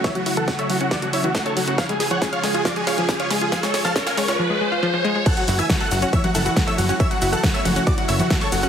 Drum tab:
CC |----------------|----------------|----------------|x---------------|
HH |xxoxxxoxxxoxxxox|xxoxxxoxxxoxxxox|xxoxxxox--------|xxoxxxoxxxoxxxox|
SH |----------------|----------------|----------------|x-xxx-xxx-xxx-xx|
SD |o---o---o---o---|o-o-o-o-o-o-o-o-|oooooooo--------|----o-------o---|
CG |---------o-----o|-o---------o-o--|----------------|--------oo---o--|
BD |o---o---o---o---|o---o---o---o---|o---o-----------|o---o---o---o---|

CC |----------------|
HH |xxoxxxoxxxoxxxox|
SH |x-xxx-xxx-xxx-xx|
SD |----o-------o---|
CG |------o----o----|
BD |o---o---o---o---|